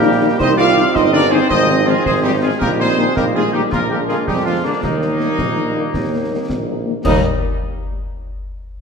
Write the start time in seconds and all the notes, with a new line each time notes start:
Already playing: A#1 G3 A#3 D#4 G4 A#4
0.03 D#3 G3 D#4
0.21 D#3 G3 D#4
0.39 C2 C4 D#4 C5 D#5, concert bass drum, snare, crash
0.58 D#3 G3 D#4 F4 D5 F5, snare
0.76 D#3 G3 D#4, snare
0.94 G1 D#4 C5 D#5, concert bass drum, snare
1.13 D#3 G3 D4 D#4 A#4 D5
1.31 D#3 G3 C4 D#4 G#4 C5
1.50 G#1 F3 D#4 C5 D#5, concert bass drum, snare
1.68 D#3 F3 C4
1.87 D#3 F3 G#3 C4 F4 G#4, snare
2.05 G#1 C4 G#4 C5, concert bass drum, snare
2.23 D#3 F3 G3 C4 D#4 G4
2.41 D#3 F3 G#3 C4 F4 G#4
2.60 A#1 G3 A#3 D#4 G4 A#4, concert bass drum, snare, crash
2.79 D#3 G3 A#3 C4 G#4 C5, snare
2.98 D#3 G3 A#3, snare
3.15 A#1 G3 A#3 D#4 G4 A#4, concert bass drum, snare
3.35 D#3 G3 G#3 A#3 F4 G#4
3.53 D#3 G3 A#3 D#4 G4
3.71 A#1 G#3 A#3 D4 F4 A#4, concert bass drum, snare
3.89 D3 G#3 A#3 G4 A#4
4.08 D3 G#3 A#3 F4 G#4, snare
4.27 F2 G3 D#4 G4, concert bass drum, snare
4.45 D3 F3 G#3 A#3 D4 F4
4.64 D3 G#3 A#3 D4
4.83 D#2 D#3 G3 A#3 D#4, concert bass drum, snare, crash
5.01 D#3 G3 A#3, snare
5.20 D#3 G3 A#3, snare
5.38 A#1, concert bass drum, snare
5.57 D#3 G3 A#3
5.75 D#3 G3 A#3
5.94 D#2, concert bass drum, snare
6.12 D#3 G3 A#3
6.31 D#3 G3 A#3
6.49 A#1, concert bass drum, snare
6.67 D#3 G3 A#3
6.86 D#3 G3 A#3
7.04 D#2 D#3 G3 A#3 D#4 D#5, concert bass drum, snare, crash